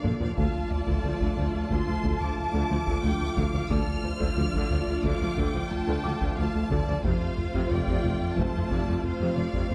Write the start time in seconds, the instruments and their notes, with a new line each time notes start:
Already playing: analog synth pad F3 A#3 D4 F4, french horn section A#3 D4, viola section D4, violin section D5 F5, grand piano F5 F6
0.03 double bass section A#1, tuba A#1, cello section A#2, analog synth bass A#2, viola section D3, taiko low-mid
0.21 cello section A#2, viola section F3, analog synth bass A#3, violin section F5, taiko low
0.37 double bass section D2, cello section D2, tuba D2, analog synth bass D2, viola section D3 F4, analog synth pad F3 A3 D4 F4, french horn section A3 F4, violin section F5 A5, taiko
0.55 analog synth bass D2
0.71 analog synth bass D2, violin section D5, taiko low
0.87 cello section D2, analog synth bass D2, viola section D3, taiko
1.04 double bass section D2, tuba D2, cello section D2, analog synth bass D2, viola section F3, taiko low
1.20 cello section D2, analog synth bass D2, viola section D3, taiko
1.37 double bass section D2, tuba D2, cello section D2, analog synth bass D2, viola section F3, taiko low
1.54 cello section D2, analog synth bass D2, viola section A3
1.70 double bass section D2, tuba D2, cello section D2, analog synth bass D2, viola section D3, violin section A5 C6, taiko
1.87 cello section D2, analog synth bass D2, viola section F3, taiko low
2.03 double bass section D2, cello section D2, tuba D2, analog synth bass D2, viola section D3, taiko
2.20 cello section D2, analog synth bass D2, viola section F3, violin section D6, taiko low
2.37 analog synth bass D2, violin section D6, taiko low
2.53 cello section D2, analog synth bass D2, viola section D3
2.70 double bass section D2, tuba D2, cello section D2, analog synth bass D3, viola section F3
2.87 cello section D2, analog synth bass D2, viola section D3, taiko
3.03 double bass section D2, cello section D2, tuba D2, analog synth bass D2, viola section F3, violin section G5
3.21 analog synth bass D2, cello section D2, viola section A3
3.36 double bass section D2, cello section D2, analog synth bass D2, tuba D2, viola section D3, violin section F5, taiko
3.54 cello section D2, analog synth bass D3, viola section F3, taiko low
3.70 tuba D2, double bass section D2, analog synth bass D2, cello section D2, viola section D3 F4, analog synth pad F3 A3 D4 F4, french horn section A3 F4, violin section A4 F6, grand piano D5 D6, taiko
3.87 analog synth bass D2
4.03 analog synth bass D2, violin section C5, taiko low
4.20 analog synth bass D2, cello section D2, viola section D3, taiko
4.36 double bass section D2, analog synth bass D2, tuba D2, cello section D2, viola section F3, violin section D5, taiko low
4.53 analog synth bass D2, cello section D2, viola section D3, taiko
4.70 tuba D2, double bass section D2, analog synth bass D2, cello section D2, viola section F3, taiko low
4.87 analog synth bass D2, cello section D2, viola section A3
5.04 double bass section D2, tuba D2, cello section D2, analog synth bass D2, viola section D3, violin section F5 D6, taiko
5.21 cello section D2, analog synth bass D2, viola section F3, taiko low
5.37 double bass section D2, tuba D2, analog synth bass D2, cello section D2, viola section D3, violin section G5, taiko
5.54 analog synth bass D2, cello section D2, viola section F3, taiko low
5.71 analog synth bass D2, violin section A5, taiko low
5.88 analog synth bass D2, cello section D2, viola section D3
6.03 tuba D2, double bass section D2, cello section D2, analog synth bass D3, viola section F3, grand piano D6
6.20 analog synth bass D2, cello section D2, viola section D3, taiko
6.37 double bass section D2, tuba D2, cello section D2, analog synth bass D2, viola section F3, violin section F5 A5
6.55 analog synth bass D2, cello section D2, viola section A3
6.70 double bass section D2, tuba D2, cello section D2, analog synth bass D2, viola section D3, violin section D5, taiko
6.88 cello section D2, analog synth bass D3, viola section F3, taiko low
7.04 double bass section F1, tuba F1, cello section F2, analog synth bass F2, viola section C3 F4, analog synth pad F3 A3 C4 F4, french horn section A3 F4, violin section C5 F5, taiko
7.21 analog synth bass F2
7.38 analog synth bass F2, taiko low
7.54 cello section F2, analog synth bass F2, viola section C3, taiko
7.71 tuba F1, double bass section F1, analog synth bass F2, cello section F2, viola section F3, violin section D5 G5, taiko low
7.88 analog synth bass F2, cello section F2, viola section C3, taiko
8.04 double bass section F1, tuba F1, analog synth bass F2, cello section F2, viola section F3, taiko low
8.21 analog synth bass F2, cello section F2, viola section A3
8.37 double bass section F1, tuba F1, analog synth bass F2, cello section F2, viola section C3, violin section C5 A5, taiko
8.54 analog synth bass F2, cello section F2, viola section F3, taiko low
8.70 double bass section F1, tuba F1, analog synth bass F2, cello section F2, viola section C3, violin section D5, taiko
8.87 analog synth bass F2, cello section F2, viola section F3, taiko low
9.04 analog synth bass F2, violin section C5 F5, taiko low
9.20 analog synth bass F2, cello section F2, viola section C3
9.37 tuba F1, double bass section F1, cello section F2, analog synth bass F3, viola section F3, violin section D5
9.54 analog synth bass F2, cello section F2, viola section C3, taiko
9.70 tuba F1, double bass section F1, cello section F2, analog synth bass F2, violin section C5